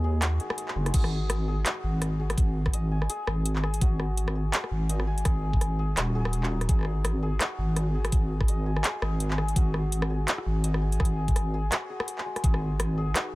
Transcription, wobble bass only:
0.00 0.39 D#2 loud
0.76 0.93 F#1 loud
0.94 1.65 G#1 medium
1.84 2.36 G#1 loud
2.38 3.08 G#1 loud
3.27 3.80 G#1 loud
3.81 4.52 G#1 medium
4.71 5.24 G#1 loud
5.25 5.96 G#1 loud
5.97 6.68 D#1 loud
6.69 7.39 G#1 loud
7.58 8.11 G#1 loud
8.12 8.83 G#1 medium
9.02 9.55 G#1 loud
9.56 10.27 G#1 medium
10.46 10.99 G#1 loud
11.00 11.71 G#1 loud
12.44 13.14 G#1 loud

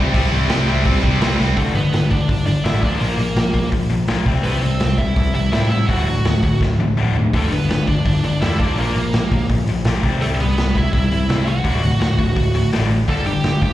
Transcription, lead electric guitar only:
1.57 1.74 A3 medium
1.57 1.76 A4 medium
1.75 2.09 B3 medium
1.75 2.11 B4 medium
2.11 2.45 D4 medium
2.11 2.45 D5 medium
2.46 2.64 D4 medium
2.46 2.64 D5 medium
2.64 2.81 E4 medium
2.64 2.83 E5 medium
2.83 3.00 D4 medium
2.83 3.00 D5 medium
3.00 3.68 A#3 medium
3.00 3.68 A#4 medium
4.44 4.61 B3 medium
4.44 4.63 B4 medium
4.63 4.96 C4 medium
4.63 5.00 C5 medium
4.98 5.32 E4 medium
4.98 5.34 E5 loud
5.35 5.52 E4 medium
5.35 5.52 E5 medium
5.53 5.70 E4 medium
5.53 5.69 E5 medium
5.70 5.88 E4 medium
5.70 5.87 E5 medium
5.87 6.57 F#4 medium
5.87 6.56 F#5 loud
7.34 7.51 A3 medium
7.34 7.53 A4 medium
7.51 7.85 B3 medium
7.51 7.87 B4 medium
7.87 8.21 D4 medium
7.87 8.21 D5 medium
8.25 8.40 D4 medium
8.25 8.41 D5 medium
8.41 8.58 E4 medium
8.41 8.60 E5 medium
8.60 8.77 D4 medium
8.60 8.78 D5 medium
8.79 9.47 A#3 medium
8.79 9.46 A#4 medium
10.21 10.27 A3 medium
10.21 10.26 A4 medium
10.41 10.73 B3 medium
10.41 10.77 B4 medium
10.77 10.92 E4 medium
10.77 10.93 E5 medium
10.93 11.43 E4 medium
10.93 11.49 E5 medium
11.48 12.69 F#4 medium
11.48 12.70 F#5 loud
13.10 13.26 A4 medium
13.10 13.26 A5 medium
13.26 13.60 G4 medium
13.26 13.62 G5 loud
13.63 13.73 G4 medium
13.63 13.73 G5 loud

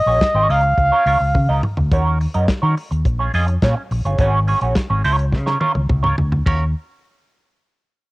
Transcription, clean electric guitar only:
0.07 0.20 C#4 medium
0.07 0.21 F#4 medium
0.07 0.21 G#4 medium
0.07 0.21 C#5 medium
0.35 0.48 C#4 medium
0.35 0.49 F#4 medium
0.35 0.50 G#4 medium
0.35 0.50 C#5 medium
0.49 0.65 C#4 medium
0.49 0.63 F4 medium
0.49 0.63 A#4 medium
0.49 0.63 D#5 medium
0.63 muted clean electric guitar stroke soft
0.78 muted clean electric guitar stroke medium
0.92 1.05 C#4 medium
0.92 1.06 F4 medium
0.92 1.06 A#4 medium
0.92 1.06 C#5 medium
1.06 1.22 C#4 medium
1.06 1.20 F4 medium
1.06 1.20 A#4 medium
1.06 1.19 C#5 medium
1.20 muted clean electric guitar stroke soft
1.35 muted clean electric guitar stroke medium
1.49 1.62 C#4 medium
1.49 1.63 F4 medium
1.49 1.63 A#4 medium
1.49 1.64 D#5 medium
1.64 muted clean electric guitar stroke soft
1.78 muted clean electric guitar stroke soft
1.92 2.18 C#4 medium
1.92 2.18 F#4 medium
1.92 2.18 A#4 medium
1.92 2.19 C#5 medium
2.21 muted clean electric guitar stroke soft
2.34 2.48 C#4 medium
2.34 2.48 F#4 medium
2.34 2.48 A#4 medium
2.34 2.49 D#5 medium
2.62 2.76 C#4 medium
2.62 2.76 F#4 medium
2.62 2.76 A#4 medium
2.62 2.77 C#5 medium
2.91 muted clean electric guitar stroke soft
3.05 muted clean electric guitar stroke soft
3.19 3.33 C#4 soft
3.19 3.33 F4 medium
3.19 3.34 G#4 medium
3.19 3.34 C#5 medium
3.34 3.53 C#4 medium
3.34 3.49 F4 loud
3.34 3.48 G#4 loud
3.34 3.48 D#5 loud
3.49 muted clean electric guitar stroke soft
3.63 3.82 C#4 medium
3.63 3.77 F4 loud
3.63 3.76 G#4 medium
3.63 3.76 C#5 loud
3.77 muted clean electric guitar stroke soft
3.92 muted clean electric guitar stroke soft
4.05 4.18 C#4 medium
4.05 4.19 F4 medium
4.05 4.19 G#4 medium
4.05 4.20 C#5 medium
4.19 4.38 C#4 medium
4.19 4.39 F#4 loud
4.19 4.39 G#4 loud
4.19 4.39 C#5 loud
4.48 4.62 C#4 medium
4.48 4.62 F#4 medium
4.48 4.61 G#4 medium
4.48 4.61 C#5 medium
4.62 4.75 C#4 medium
4.62 4.76 F#4 medium
4.62 4.76 G#4 medium
4.62 4.76 C#5 medium
4.76 muted clean electric guitar stroke soft
4.90 5.03 C#4 medium
4.90 5.04 F#4 soft
4.90 5.05 G#4 medium
4.90 5.04 C#5 medium
5.04 5.24 C#4 loud
5.04 5.18 F4 medium
5.04 5.18 A#4 loud
5.04 5.17 C#5 loud
5.18 muted clean electric guitar stroke soft
5.32 muted clean electric guitar stroke medium
5.46 5.59 C#4 medium
5.46 5.59 F4 medium
5.46 5.60 A#4 medium
5.46 5.60 C#5 medium
5.60 5.80 C#4 medium
5.60 5.74 F4 medium
5.60 5.74 A#4 medium
5.60 5.73 C#5 medium
5.74 muted clean electric guitar stroke soft
5.89 muted clean electric guitar stroke soft
6.03 6.17 C#4 medium
6.03 6.17 F4 medium
6.03 6.17 A#4 medium
6.03 6.17 C#5 medium
6.32 muted clean electric guitar stroke soft
6.46 6.63 C#4 medium
6.46 6.63 F#4 medium
6.46 6.64 A#4 medium
6.46 6.64 C#5 medium

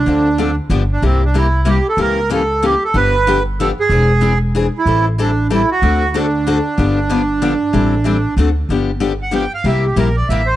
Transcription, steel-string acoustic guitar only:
0.06 0.27 D3 medium
0.06 0.27 F3 medium
0.06 0.27 C4 medium
0.06 0.28 D4 medium
0.06 0.27 A4 medium
0.38 0.49 D3 medium
0.38 0.50 F3 medium
0.38 0.50 C4 medium
0.38 0.50 D4 medium
0.38 0.50 A4 medium
0.70 0.81 D3 medium
0.70 0.82 F3 medium
0.70 0.82 B3 medium
0.70 0.82 D4 medium
0.70 0.82 G4 medium
1.02 1.23 C3 medium
1.02 1.23 G3 medium
1.02 1.23 A#3 medium
1.02 1.23 E4 medium
1.02 1.23 G4 medium
1.34 1.45 C3 medium
1.34 1.46 G3 medium
1.34 1.46 A#3 medium
1.34 1.46 E4 medium
1.34 1.46 G4 medium
1.65 1.77 C3 medium
1.65 1.77 G3 medium
1.65 1.77 A#3 medium
1.65 1.77 E4 medium
1.65 1.78 G4 medium
1.98 2.18 C#3 medium
1.98 2.18 E3 medium
1.98 2.18 A#3 medium
1.98 2.18 C#4 medium
1.98 2.18 G4 medium
2.30 2.41 C#3 medium
2.30 2.41 E3 medium
2.30 2.41 A#3 medium
2.30 2.42 C#4 medium
2.30 2.42 G4 medium
2.62 2.73 C#3 medium
2.62 2.73 E3 medium
2.62 2.74 A#3 medium
2.62 2.74 C#4 loud
2.62 2.74 G4 medium
2.94 3.14 D3 medium
2.94 3.14 F3 medium
2.94 3.14 B3 medium
2.94 3.15 D4 medium
2.94 3.15 G4 medium
3.27 3.37 D3 medium
3.27 3.38 F3 medium
3.27 3.38 B3 medium
3.27 3.38 D4 medium
3.27 3.38 G4 loud
3.60 3.70 D3 medium
3.60 3.70 F3 medium
3.60 3.70 B3 medium
3.60 3.70 D4 medium
3.60 3.70 G4 medium
3.90 4.10 E3 medium
3.90 4.11 C4 medium
3.90 4.11 D4 medium
3.90 4.11 G#4 medium
4.21 4.32 E3 medium
4.21 4.33 C4 medium
4.21 4.33 D4 medium
4.21 4.33 G#4 medium
4.55 4.65 E3 medium
4.55 4.65 C4 medium
4.55 4.66 D4 medium
4.55 4.66 G#4 medium
4.86 5.06 E3 medium
4.86 5.06 G3 medium
4.86 5.06 C4 medium
4.86 5.07 E4 medium
4.86 5.07 A4 medium
5.18 5.29 E3 medium
5.18 5.29 G3 medium
5.18 5.29 C4 medium
5.18 5.30 E4 medium
5.18 5.30 A4 medium
5.50 5.61 E3 medium
5.50 5.61 G3 medium
5.50 5.61 C4 medium
5.50 5.61 E4 medium
5.50 5.62 A4 medium
5.82 6.02 D3 medium
5.82 6.02 A3 medium
5.82 6.02 C4 medium
5.82 6.02 F#4 medium
5.82 6.02 A4 medium
6.14 6.25 D3 medium
6.14 6.25 A3 medium
6.14 6.25 C4 loud
6.14 6.26 F#4 medium
6.14 6.25 A4 medium
6.47 6.57 D3 medium
6.47 6.57 A3 medium
6.47 6.57 C4 medium
6.47 6.57 F#4 medium
6.47 6.58 A4 medium
6.78 6.98 D3 medium
6.78 6.98 F3 medium
6.78 6.98 B3 medium
6.78 6.98 D4 medium
6.78 6.98 G4 medium
7.09 7.20 D3 medium
7.09 7.21 F3 medium
7.09 7.21 B3 medium
7.09 7.21 D4 medium
7.09 7.21 G4 loud
7.42 7.52 D3 medium
7.42 7.53 F3 medium
7.42 7.53 B3 medium
7.42 7.53 D4 medium
7.42 7.53 G4 medium
7.73 7.93 E3 medium
7.73 7.93 G3 medium
7.73 7.94 C4 medium
7.73 7.94 E4 medium
7.73 7.94 A4 medium
8.04 8.16 E3 medium
8.04 8.16 G3 medium
8.04 8.16 C4 medium
8.04 8.16 E4 medium
8.04 8.17 A4 medium
8.38 8.48 D3 medium
8.38 8.48 A3 medium
8.38 8.49 C4 medium
8.38 8.49 F#4 medium
8.38 8.49 A4 loud
8.70 8.90 D3 medium
8.70 8.90 F3 medium
8.70 8.90 B3 medium
8.70 8.90 D4 medium
8.70 8.90 G4 medium
9.00 9.11 D3 medium
9.00 9.11 F3 medium
9.00 9.12 B3 medium
9.00 9.12 D4 medium
9.00 9.12 G4 medium
9.31 9.43 D3 medium
9.31 9.43 F3 medium
9.31 9.43 B3 medium
9.31 9.44 D4 medium
9.31 9.44 G4 medium
9.64 9.85 C3 medium
9.64 9.85 G3 medium
9.64 9.85 A#3 medium
9.64 9.85 E4 medium
9.64 9.85 G4 medium
9.96 10.08 C3 medium
9.96 10.07 G3 medium
9.96 10.08 A#3 medium
9.96 10.08 E4 medium
9.96 10.08 G4 medium
10.30 10.40 C3 medium
10.30 10.40 G3 medium
10.30 10.41 A#3 medium
10.30 10.41 E4 medium
10.30 10.41 G4 medium

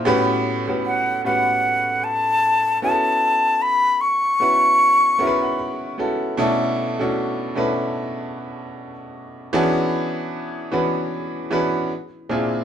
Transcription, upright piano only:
0.05 0.57 A2 loud
0.05 0.57 B3 loud
0.05 0.57 C#4 loud
0.05 0.57 F#4 loud
0.05 0.57 G4 loud
0.05 0.58 B4 loud
0.67 1.16 A2 medium
0.67 1.16 B3 medium
0.67 1.16 C#4 medium
0.67 1.17 F#4 medium
0.67 1.17 G4 medium
0.67 1.17 B4 medium
1.25 2.59 A2 medium
1.25 2.59 B3 medium
1.25 2.60 C#4 medium
1.25 2.60 F#4 medium
1.25 2.60 G4 medium
1.25 2.60 B4 medium
2.82 4.17 B3 medium
2.82 4.17 C#4 medium
2.82 4.18 E4 medium
2.82 4.18 F#4 medium
2.82 2.90 G#4 medium
2.91 4.21 A4 medium
4.40 5.08 B3 medium
4.40 5.08 C#4 medium
4.40 5.08 E4 medium
4.40 5.09 F#4 medium
4.40 5.09 B4 medium
5.19 5.87 B3 loud
5.19 5.87 C#4 medium
5.19 5.87 E4 medium
5.19 5.88 F#4 medium
5.19 5.27 A#4 medium
5.19 5.40 E5 medium
5.27 5.91 B4 loud
5.42 5.57 F#5 medium
5.59 6.33 B5 medium
5.98 6.32 B3 medium
5.98 6.32 C#4 medium
5.98 6.32 E4 medium
5.98 6.32 F#4 medium
5.98 6.33 A4 loud
6.37 6.88 B2 loud
6.37 6.89 A3 loud
6.37 6.89 C#4 loud
6.37 6.89 D4 loud
6.37 6.89 E4 loud
6.37 6.89 A4 loud
6.99 7.47 B2 medium
6.99 7.48 A3 medium
6.99 7.48 C#4 medium
6.99 7.48 D4 medium
6.99 7.48 E4 medium
6.99 7.48 F#4 medium
7.55 8.90 B2 medium
7.55 8.91 A3 medium
7.55 8.91 C#4 medium
7.55 8.91 D4 medium
7.55 8.91 E4 medium
7.55 8.92 B4 loud
9.53 10.55 E3 loud
9.53 10.55 B3 loud
9.53 10.56 C#4 loud
9.53 10.56 D4 loud
9.53 10.56 F#4 loud
9.53 10.56 G#4 loud
10.72 11.40 E3 medium
10.72 11.40 B3 medium
10.72 11.40 C#4 medium
10.72 11.40 D4 medium
10.72 11.40 F#4 medium
10.72 11.40 B4 loud
11.51 11.90 E3 loud
11.51 11.90 B3 medium
11.51 11.90 C#4 medium
11.51 11.90 D4 medium
11.51 11.91 F#4 medium
11.51 11.91 B4 loud
12.29 12.63 A#2 medium
12.29 12.63 C4 medium
12.29 12.64 D4 medium
12.29 12.64 E4 medium
12.29 12.64 F4 medium
12.29 12.64 G#4 loud

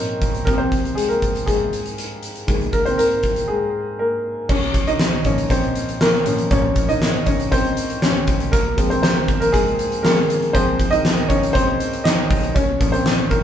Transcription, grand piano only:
0.00 0.49 A#2 soft
0.00 0.47 F3 soft
0.00 0.47 A#3 medium
0.00 0.47 C4 medium
0.00 0.49 C#4 medium
0.00 0.48 D#4 medium
0.00 0.45 A#4 medium
0.00 0.49 C5 medium
0.00 0.49 C#5 medium
0.00 0.48 D#5 medium
0.45 2.44 C3 soft
0.45 2.44 F3 soft
0.45 0.59 A#3 medium
0.45 0.58 C4 medium
0.45 0.59 A#4 medium
0.58 0.95 C4 medium
0.58 0.94 C5 medium
0.95 1.09 G#3 medium
0.95 1.09 G#4 medium
1.09 1.45 A#3 soft
1.09 1.48 A#4 medium
1.46 2.19 G#3 medium
1.46 2.18 G#4 medium
2.47 2.81 D#3 soft
2.47 2.81 G#3 soft
2.47 2.73 A#3 soft
2.73 2.86 A#3 medium
2.73 2.86 A#4 medium
2.85 2.98 C4 medium
2.85 2.99 C5 medium
2.98 3.46 A#3 medium
2.98 3.45 A#4 medium
3.48 4.21 G#3 soft
3.48 4.20 G#4 medium
3.99 4.47 A#3 medium
3.99 4.51 A#4 medium
4.49 4.85 C#4 medium
4.49 4.88 C#5 medium
4.87 5.23 D#4 medium
4.87 5.23 D#5 medium
5.25 5.97 A#2 soft
5.25 5.97 F3 soft
5.25 5.49 C#4 medium
5.25 5.51 C#5 medium
5.51 5.98 C4 medium
5.51 6.03 C5 medium
6.01 6.48 A#3 medium
6.01 6.53 A#4 medium
6.25 6.48 A#2 soft
6.25 6.49 F3 soft
6.25 6.49 C#4 soft
6.51 7.23 A#2 soft
6.51 7.23 F3 soft
6.51 6.87 C#4 medium
6.51 6.90 C#5 medium
6.89 7.25 D#4 medium
6.89 7.28 D#5 medium
7.26 7.33 C#4 medium
7.26 7.32 C#5 medium
7.52 7.99 C4 medium
7.52 8.04 C5 medium
8.02 8.50 C#4 medium
8.02 8.49 C#5 medium
8.52 8.88 A#3 medium
8.52 8.88 A#4 medium
8.77 9.49 F3 soft
8.77 9.50 G#3 soft
8.77 8.90 C4 medium
8.90 9.02 C4 medium
8.90 9.01 C5 medium
9.03 9.39 C4 medium
9.03 9.42 C5 medium
9.40 9.53 A#3 medium
9.40 9.54 A#4 medium
9.53 10.01 G#3 medium
9.53 10.00 G#4 medium
10.03 10.26 F3 soft
10.03 10.27 G#3 soft
10.03 10.51 A#3 medium
10.03 10.27 C4 soft
10.03 10.55 A#4 medium
10.53 12.51 F3 soft
10.53 12.52 G#3 soft
10.53 10.90 C4 medium
10.53 10.93 C5 medium
10.91 11.28 D#4 medium
10.91 11.30 D#5 loud
11.28 11.36 C#4 medium
11.28 11.34 C#5 medium
11.53 12.02 C4 medium
11.53 12.01 C5 loud
12.04 12.53 D#4 medium
12.04 12.57 D#5 medium
12.55 12.80 C#4 medium
12.55 12.91 C#5 medium
12.80 13.43 A#2 soft
12.80 13.43 F3 soft
12.80 13.43 C#4 medium
12.92 13.29 C4 medium
12.92 13.32 C5 medium
13.30 13.43 A#3 medium
13.30 13.43 A#4 medium

